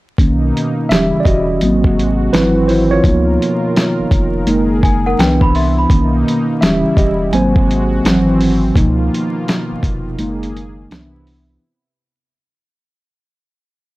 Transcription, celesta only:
4.83 5.05 G#5 medium
5.06 5.18 A#4 medium
5.06 5.18 F#5 medium
5.19 5.41 B4 medium
5.19 5.41 G5 medium
5.42 5.54 B5 medium
5.55 5.77 E5 medium
5.55 5.77 C6 medium
5.78 6.12 B5 medium

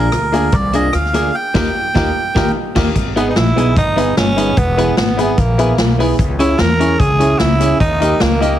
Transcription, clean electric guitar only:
0.33 0.49 A#3 medium
0.33 0.50 D4 medium
0.33 0.50 G#4 medium
0.73 0.89 A#3 medium
0.73 0.90 D4 medium
0.73 0.90 G#4 medium
0.93 muted clean electric guitar stroke soft
1.14 1.30 A#3 medium
1.14 1.30 D4 medium
1.14 1.31 G#4 medium
1.54 1.68 A#3 loud
1.54 1.68 D#4 loud
1.54 1.69 G4 loud
1.94 2.08 A#3 loud
1.94 2.08 D#4 loud
1.94 2.09 G4 loud
2.35 2.48 A#3 medium
2.35 2.49 D#4 medium
2.35 2.49 G4 medium
2.75 2.89 A#3 loud
2.75 2.89 D#4 loud
2.75 2.90 G4 medium
3.16 3.32 B3 medium
3.16 3.32 D#4 medium
3.16 3.33 G#4 medium
3.57 3.72 B3 medium
3.57 3.73 D#4 medium
3.57 3.73 G#4 medium
3.96 4.12 B3 medium
3.96 4.13 D#4 medium
3.96 4.13 G#4 medium
4.16 muted clean electric guitar stroke soft
4.37 4.53 B3 medium
4.37 4.54 D#4 medium
4.37 4.54 G#4 medium
4.78 4.94 B3 medium
4.78 4.94 E4 loud
4.78 4.95 G#4 loud
5.18 5.34 B3 medium
5.18 5.35 E4 medium
5.18 5.35 G#4 loud
5.38 muted clean electric guitar stroke soft
5.59 5.74 B3 medium
5.59 5.75 E4 medium
5.59 5.75 G#4 medium
5.99 6.15 B3 medium
5.99 6.15 E4 medium
5.99 6.16 G#4 loud
6.39 6.55 C#4 loud
6.39 6.56 E4 loud
6.39 6.56 G#4 loud
6.79 6.95 C#4 medium
6.79 6.96 E4 medium
6.79 6.97 G#4 loud
7.21 7.36 C#4 medium
7.21 7.37 E4 loud
7.21 7.37 G#4 loud
7.61 7.77 C#4 medium
7.61 7.77 E4 medium
7.61 7.78 G#4 loud
8.02 8.17 A#3 medium
8.02 8.18 D#4 medium
8.02 8.18 G4 medium
8.42 8.57 A#3 medium
8.42 8.58 D#4 medium
8.42 8.58 G4 medium

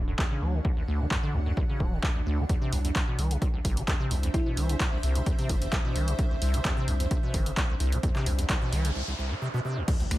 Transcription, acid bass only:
0.08 0.14 F#2 medium
0.19 0.25 D2 loud
0.31 0.43 C#3 medium
0.42 0.55 F#3 medium
0.54 0.60 D3 medium
0.65 0.72 D2 medium
0.77 0.83 D2 medium
0.88 1.02 D2 loud
1.00 1.06 F#3 medium
1.11 1.18 F#2 loud
1.23 1.35 D3 loud
1.34 1.41 D2 loud
1.46 1.52 F#2 medium
1.57 1.64 D2 medium
1.69 1.82 C#3 medium
1.80 1.94 F#3 medium
1.92 1.98 D3 loud
2.03 2.10 D2 medium
2.15 2.21 D2 medium
2.26 2.40 D2 loud
2.38 2.45 F#3 loud
2.49 2.56 E2 loud
2.62 2.74 C3 loud
2.72 2.79 C2 medium
2.85 2.91 E2 medium
2.96 3.02 C2 loud
3.08 3.20 B2 medium
3.19 3.32 E3 medium
3.31 3.37 C3 loud
3.42 3.48 C2 medium
3.54 3.60 C2 medium
3.65 3.78 C2 loud
3.77 3.83 E3 loud
3.88 3.95 E2 loud
4.00 4.12 C3 loud
4.11 4.18 C2 loud
4.23 4.29 E2 medium
4.34 4.41 C2 medium
4.46 4.59 B2 medium
4.57 4.71 E3 medium
4.69 4.75 C3 medium
4.80 4.87 C2 medium
4.92 4.98 C2 medium
5.03 5.17 C2 loud
5.16 5.22 E3 loud
5.26 5.33 E2 medium
5.39 5.51 C3 loud
5.50 5.56 C2 loud
5.62 5.68 E2 medium
5.73 5.79 C2 loud
5.85 5.97 B2 medium
5.96 6.09 E3 medium
6.08 6.14 C3 loud
6.19 6.25 C2 medium
6.31 6.37 C2 medium
6.42 6.55 C2 loud
6.54 6.60 E3 medium
6.65 6.72 E2 loud
6.77 6.89 C3 loud
6.88 6.95 C2 loud
7.00 7.06 E2 medium
7.11 7.18 C2 medium
7.23 7.36 B2 medium
7.34 7.48 E3 medium
7.46 7.52 C3 loud
7.57 7.64 C2 medium
7.69 7.75 C2 medium
7.80 7.94 C2 loud
7.92 7.98 E3 loud
8.03 8.10 E2 loud
8.15 8.28 C3 loud
8.26 8.33 C2 loud
8.38 8.45 E2 medium
8.49 8.56 C2 loud
8.62 8.74 B2 medium
8.72 8.86 E3 medium
8.85 8.91 C3 loud
8.95 9.02 C2 medium
9.08 9.14 C2 medium
9.19 9.32 C2 medium
9.31 9.34 C3 medium
9.42 9.48 C3 medium
9.54 9.60 B2 loud
9.65 9.78 C3 medium
9.77 9.83 C2 medium
9.88 9.95 D2 medium
10.00 10.06 D2 medium
10.11 10.18 D2 loud

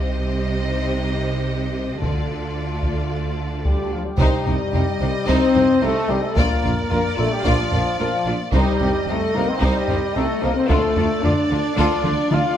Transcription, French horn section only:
0.00 1.85 G3 medium
0.00 1.85 D#4 medium
2.02 3.62 A3 soft
2.02 3.61 F4 soft
3.65 3.90 G3 medium
3.94 4.07 F3 soft
4.04 5.27 G3 medium
5.28 5.82 C4 medium
5.82 6.09 A3 medium
6.09 6.23 G3 medium
6.23 6.36 A3 medium
6.36 6.90 A#3 medium
6.91 7.17 A#3 medium
7.18 7.31 A3 medium
7.32 7.45 G3 medium
7.46 7.99 F3 medium
8.00 8.26 F3 medium
8.55 9.04 G3 medium
9.09 9.35 A3 medium
9.35 9.48 A#3 medium
9.48 9.61 C4 medium
9.63 10.15 G3 medium
10.15 10.42 A3 medium
10.43 10.56 A#3 medium
10.55 10.69 C4 medium
10.68 11.23 A3 medium
11.22 11.75 D4 medium
11.77 12.30 D4 medium
12.32 12.57 F4 loud

